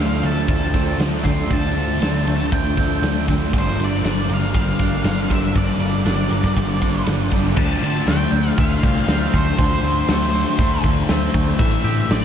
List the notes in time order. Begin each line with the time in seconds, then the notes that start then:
Already playing: D3 F3 A3 F5
0.00 D2 F3 A3 C4 D4
0.22 D2 A3 D4 A5, ride, tambourine
0.35 tambourine
0.48 D2 F3 A5, kick, ride, tambourine
0.62 tambourine
0.73 F3 A3 C4 D4, kick, ride, tambourine
0.98 D2 D3 F3 A3, snare, ride, tambourine
1.02 D4
1.24 D2 A3 C4 D4 C6, kick, ride, tambourine
1.30 F3
1.37 tambourine
1.50 D2 D3 F3 A3 D4 A5, kick, ride
1.54 D4
1.63 tambourine
1.75 D2 F3 A3 D4, ride, tambourine
1.79 A3
2.00 D2 D3 F3 A3 C4 D4, snare, ride, tambourine
2.05 D4
2.25 D2 A3 D4, ride, tambourine
2.40 tambourine
2.52 D2 F3 G5, kick, ride
2.65 tambourine
2.77 A3 C4 D4, kick, ride, tambourine
2.82 F3
3.02 D2 D3 F3 A3 D4, snare, ride, tambourine
3.28 D2 F3 A3 C4 D4, kick, ride, tambourine
3.41 tambourine
3.52 G1 G2 D3 F3 G3 A#3 D4, kick, ride
3.58 C5
3.67 snare, tambourine
3.78 G1 D3 F3 G3 A#3 D4, ride, tambourine
3.82 G3 D5
4.02 G1 G2 D3 G3 D4, snare, ride, tambourine
4.07 G3 A#3 D4
4.18 tambourine
4.28 G1 D3 G3 A#3, ride, tambourine
4.34 F5
4.43 tambourine
4.54 G1 F3, kick, ride
4.60 F5
4.69 tambourine
4.79 A#3 D4, kick, ride, tambourine
4.83 G3
5.04 G1 G2 D3 F3 G3, snare, ride, tambourine
5.08 G3 A#3 D4
5.29 G1 D3 G3 D4, kick, ride, tambourine
5.33 G3 A#3 E5
5.54 G1 G2 D3 F3 G3 D5, kick, ride, tambourine
5.59 D3 G3 A#3 D4
5.69 tambourine
5.78 G1 D3 F3 G3, ride, tambourine
5.83 G3 A#3 D4
5.94 tambourine
6.04 G1 G2 D3 G3 D4, snare, ride, tambourine
6.08 G3 A#3 D4
6.20 tambourine
6.29 G1 D3 G3 A#3, ride, tambourine
6.44 kick, snare, tambourine
6.56 G1 F3, kick, ride
6.69 tambourine
6.82 G3 A#3 D4, kick, ride, tambourine
6.95 tambourine
7.06 G1 G2 D3 F3 G3 A#3 D4, snare, ride, tambourine
7.19 tambourine
7.31 G1 D3 G3 D4, kick, ride, tambourine
7.35 G3 A#3
7.44 tambourine
7.56 D2 D3 F3 A3 A5, kick, crash
7.60 D4
7.82 D3 C4 A5, open hi-hat
8.07 D2 D3 A3 D4 G5, snare, open hi-hat
8.32 D2 C4, open hi-hat
8.50 F5
8.57 D2 D3 A3 D4 F5, kick, open hi-hat
8.82 C2 F3 A3 D4, kick, open hi-hat
9.06 D2 D3 A3 C4 D4, snare, open hi-hat
9.34 D2 A3 C5, kick, open hi-hat
9.58 D2 D3 F3 A3 D4, kick, open hi-hat
9.72 snare
9.83 D2 C4, open hi-hat
10.08 D2 D3 A3, snare, open hi-hat
10.12 D4
10.34 C4, open hi-hat
10.47 snare
10.58 D2 D3 A3, kick, open hi-hat
10.62 D4
10.83 D2 F3 D4, kick, open hi-hat
10.87 A3
11.08 D2 D3 A3 C4 D4, snare, open hi-hat
11.34 D2 A3, kick, open hi-hat
11.59 A1 A2 E3 A3 E5, kick, open hi-hat
11.84 A2 G4, open hi-hat
12.08 A1 A2 E3 A3 C4 D5, snare, open hi-hat